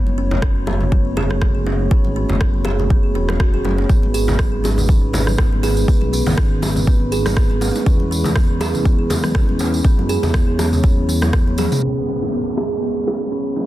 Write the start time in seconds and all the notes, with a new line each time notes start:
Already playing: F#1 A3 C#4 F#4 C#5
0.07 muted conga
0.18 C#4
0.31 low bongo, low conga
0.42 C#4, kick, cross-stick, muted conga, high conga
0.67 C#4, high bongo, high conga
0.81 muted conga, low conga
0.92 B3, kick, high conga
1.17 G#4, high bongo, low bongo, muted conga, low conga
1.30 cross-stick, high conga
1.42 B3, kick, cross-stick, low conga
1.55 muted conga
1.66 C#4, low bongo
1.91 C#4, kick
2.05 G#1, muted conga
2.16 C#4
2.29 F#1, low bongo, low conga
2.41 F#1 B3, kick, cross-stick, muted conga, high conga
2.65 G#4, high bongo, high conga
2.79 muted conga, low conga
2.90 B3, kick, high conga
3.15 E1 C#4, muted conga
3.29 cross-stick, low bongo, high conga
3.40 F#4, kick, cross-stick
3.54 G#4, muted conga
3.64 F#1 C#4, low bongo, high conga
3.78 low bongo
3.89 G#1 G#3 B3 D#4 B4, kick, tambourine
4.03 muted conga
4.14 G#4, tambourine
4.28 tambourine, low bongo, low conga
4.39 kick, cross-stick, tambourine, muted conga, high conga
4.64 C#4, tambourine, high bongo, high conga
4.78 tambourine, muted conga, low conga
4.89 C#4, kick, tambourine, high conga
5.13 C#4, tambourine, high bongo, low bongo, muted conga, low conga
5.27 cross-stick, tambourine, high conga
5.38 B3, kick, cross-stick, tambourine, low conga
5.53 muted conga
5.63 G#4, tambourine, low bongo
5.77 tambourine
5.88 B3, kick, tambourine
6.02 B1, muted conga
6.13 C#4, tambourine
6.26 G#1, tambourine, low bongo, low conga
6.38 G#1 C#4, kick, cross-stick, muted conga, high conga
6.62 C#4, tambourine, high bongo, high conga
6.76 tambourine, muted conga, low conga
6.87 B3, kick, high conga
7.12 G#4, tambourine, muted conga
7.26 cross-stick, tambourine, low bongo, high conga
7.37 B3, kick, cross-stick, tambourine
7.51 muted conga
7.61 C#4, tambourine, low bongo, high conga
7.75 tambourine, low bongo
7.86 E2 C#4 E4, kick, tambourine
8.00 muted conga
8.11 C#4, tambourine
8.24 tambourine, low bongo, low conga
8.36 B3, kick, cross-stick, tambourine, muted conga, high conga
8.60 G#4, tambourine, high bongo, high conga
8.74 tambourine, muted conga, low conga
8.85 B3, kick, tambourine, high conga
9.10 C#4, tambourine, high bongo, low bongo, muted conga, low conga
9.24 cross-stick, tambourine, high conga
9.35 C#4, kick, cross-stick, tambourine, low conga
9.49 muted conga
9.59 C#4, tambourine, low bongo
9.74 tambourine
9.84 B3 C#5, kick, tambourine
9.98 F#2, muted conga
10.09 G#4, tambourine
10.23 E2, tambourine, high bongo, low bongo, low conga
10.34 E2 B3, kick, cross-stick, tambourine, muted conga, high conga
10.59 C#4, tambourine, high bongo, high conga
10.73 tambourine, muted conga, low conga
10.83 C#4, kick, tambourine, high conga
11.09 C#4, tambourine, muted conga
11.22 cross-stick, tambourine, low bongo, high conga
11.33 B3, kick, cross-stick
11.47 muted conga
11.58 G#4, high tom, tambourine, low bongo, high conga
11.72 mid tom, tambourine, low bongo
11.83 G#3 C#4 D#4 E4 C#5, tambourine, downlifter
12.08 C#4, tambourine
12.22 tambourine, low bongo
12.32 B3, tambourine
12.57 G#4, tambourine, high bongo
12.71 tambourine
12.82 B3, tambourine
13.07 C#4, tambourine, high bongo, low bongo
13.21 tambourine
13.32 C#4, tambourine
13.56 C#4, tambourine, low bongo